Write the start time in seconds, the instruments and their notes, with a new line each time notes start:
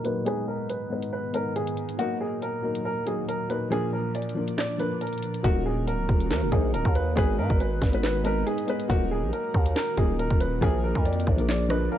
Already playing: ambient pad D#2 A#2 F#3, felt piano F#3 A#3 D#4 A#4
0.03 felt piano F#3 A#3 D#4 A#4, upright piano B4, closed hi-hat
0.25 ambient pad G#2 D#3 B3, felt piano G#3 B3 D#4 B4, upright piano G#4, closed hi-hat
0.48 upright piano A#4
0.69 upright piano B4, closed hi-hat
0.90 felt piano G#3 B3 D#4 B4
1.02 closed hi-hat
1.13 upright piano B4
1.33 felt piano G#3 B3 D#4 B4, upright piano A#4, closed hi-hat
1.56 upright piano G#4, closed hi-hat
1.67 closed hi-hat
1.77 closed hi-hat
1.89 closed hi-hat
1.98 ambient pad D#2 A#2 F#3, felt piano F#3 A#3 D#4 A#4, upright piano F#4, closed hi-hat
2.21 upright piano G#4
2.42 upright piano A#4, closed hi-hat
2.62 felt piano F#3 A#3 D#4 A#4
2.75 closed hi-hat
2.85 upright piano A#4
3.06 felt piano F#3 A#3 D#4 A#4, upright piano G#4, closed hi-hat
3.28 upright piano A#4, closed hi-hat
3.49 felt piano F#3 A#3 D#4 A#4, upright piano B4, closed hi-hat
3.70 felt piano F3 A#3 D4 A#4, ambient pad F3 D4, upright piano G#4, closed hi-hat
3.93 upright piano A#4
4.15 upright piano D5, closed hi-hat
4.22 closed hi-hat
4.29 closed hi-hat
4.35 felt piano F3 A#3 D4 A#4
4.48 closed hi-hat
4.58 upright piano D5, snare, clap
4.78 felt piano F3 A#3 D4 A#4, upright piano B4, closed hi-hat
5.01 upright piano A#4, closed hi-hat
5.07 closed hi-hat
5.13 closed hi-hat
5.18 closed hi-hat
5.23 closed hi-hat
5.34 closed hi-hat
5.43 808-style bass D#1, ambient pad D#3 A#3 F#4, felt piano F#3 A#3 D#4 A#4, upright piano F#4, kick, closed hi-hat
5.66 upright piano G#4
5.87 808-style bass D1, upright piano A#4, closed hi-hat
6.09 808-style bass D#1, kick
6.20 closed hi-hat
6.30 808-style bass D#2, upright piano A#4, snare, clap
6.42 808-style bass D#1
6.51 808-style bass A#1, felt piano F#3 A#3 D#4 A#4, upright piano G#4, kick, closed hi-hat
6.74 808-style bass D1, upright piano A#4, closed hi-hat
6.85 808-style bass D#2, kick
6.95 upright piano B4, closed hi-hat
7.16 808-style bass G#1, felt piano G#3 B3 D#4 B4, ambient pad G#3 D#4 B4, upright piano G#4, kick, closed hi-hat
7.38 808-style bass G#2, upright piano A#4
7.50 808-style bass G#1, kick
7.60 upright piano B4, closed hi-hat
7.82 808-style bass G#1, kick, snare
7.92 felt piano G#3 B3 D#4 B4, closed hi-hat
8.03 upright piano B4, snare, clap
8.24 felt piano G#3 B3 D#4 B4, upright piano A#4, closed hi-hat
8.47 upright piano G#4, closed hi-hat
8.58 closed hi-hat
8.67 felt piano G#3 B3 D#4 B4, closed hi-hat
8.80 closed hi-hat
8.88 808-style bass D#1, ambient pad D#3 A#3 F#4, felt piano F#3 A#3 D#4 A#4, upright piano F#4, kick, closed hi-hat
9.11 upright piano G#4
9.23 808-style bass A#1
9.33 upright piano A#4, closed hi-hat
9.54 808-style bass D#2, kick
9.66 closed hi-hat
9.76 upright piano A#4, snare, clap
9.96 808-style bass D#1, felt piano F#3 A#3 D#4 A#4, upright piano G#4, kick, closed hi-hat
10.19 upright piano A#4, closed hi-hat
10.30 808-style bass D#1, kick
10.40 upright piano B4, closed hi-hat
10.61 808-style bass A#1, felt piano F3 A#3 D4 A#4, ambient pad F3 D4, upright piano G#4, kick, closed hi-hat
10.84 upright piano A#4
10.95 808-style bass F2, kick
11.05 upright piano D5, closed hi-hat
11.13 closed hi-hat
11.20 closed hi-hat
11.27 808-style bass A#1, felt piano A#4, kick
11.37 felt piano F3 A#3 D4 A#4, closed hi-hat
11.48 upright piano D5, felt piano D5, snare, clap
11.69 felt piano F3 A#3 D4 A#4 D#5, upright piano B4, cross-stick, closed hi-hat
11.92 upright piano A#4, felt piano F5